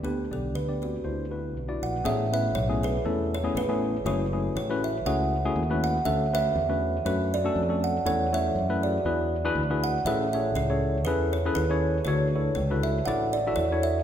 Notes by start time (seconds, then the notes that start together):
0.03 D2 D3 B3 D4 G4 B4
0.31 B1 B3 D4 G4 A4 D5
0.54 D2 B4
0.68 B3 D4 G4 D5
0.82 A3 C4 F#4
1.04 D2 D3 D4 E4 F#4 C5
1.31 D4 E4 F#4 B4
1.55 B1
1.68 D4 E4 F#4 D5
1.82 A#1 F#5
2.04 A1 A2 A3 B3 C#4 E4 G#4 C#5 E5
2.33 A3 B3 C#4 E4 B4 E5
2.55 B1 C#5
2.68 A3 B3 C#4 E4 G#4
2.83 E4 G#4 B4
3.05 E2 A3 B3 C#4 E4 A4
3.35 C#5
3.44 A3 B3 C#4 E4 G#4
3.55 A1 E4 G#4 B4
3.69 A3 B3 C#4 E4 G#4
4.05 F#1 A3 C#4 E4 F#4 G#4 A4 C#5
4.33 A3 C#4 E4 F#4 G#4
4.56 A1 C#5
4.70 A3 C#4 E4 F#4 B4
4.84 E5
5.06 C#2 A3 C#4 E4 F#4 G#4 A4 C#5 F#5
5.45 A3 C#4 E4 F#4 G#4
5.56 D#2
5.70 A3 C#4 E4 F#4 B4
5.84 F#5
6.05 D2 D3 A3 C#4 D4 F#4 A4 C#5 E5
6.33 A3 C#4 D4 F#4 A4 B4 C#5 E5
6.56 E2
6.69 A3 C#4 D4 F#4 B4
7.05 F#2 A3 C#4 D4 F#4 A4 B4 C#5
7.34 F#4 A4 D5
7.45 A3 C#4 D4 F#4 A4
7.56 F2
7.69 A3 C#4 D4 F#4 A4
7.84 F#5
8.05 E2 E3 A3 C#4 E4 A4 C#5 F#5
8.32 A3 C#4 E4 A4 C#5 E5
8.55 F#2
8.69 A3 C#4 E4 A4 B4
8.83 F#4 G#4 D5
9.05 E2 E3 D4 E4 F#4 G#4 B4
9.45 D4 E4 F#4 G#4 B4
9.55 D2
9.70 D4 E4 F#4 G#4 B4
9.84 F#5
10.05 A1 A2 C#4 E4 G#4 A4 B4 C#5 E5
10.33 C#4 E4 G#4 A4 C#5 E5
10.55 C#2 E4 G#4 C#5
10.70 C#4 E4 G#4 A4 C#5
11.05 E2 C#4 E4 G#4 A4 B4
11.33 C#5
11.45 C#4 E4 G#4 A4 B4
11.55 D#2 E4 G#4 B4
11.70 C#4 E4 G#4 A4 C#5
12.05 D2 D3 D4 E4 F#4 A4 C#5
12.35 D4 E4 F#4 A4 C#5
12.55 C#2 C#5
12.70 D4 E4 F#4 A4 B4
12.83 E5
13.05 A1 D4 E4 F#4 A4 C#5 D5 F#5
13.33 D5
13.47 D4 E4 F#4 A4 E5
13.56 E2 C#5
13.72 D4 E4 F#4 A4 C#5
13.83 E5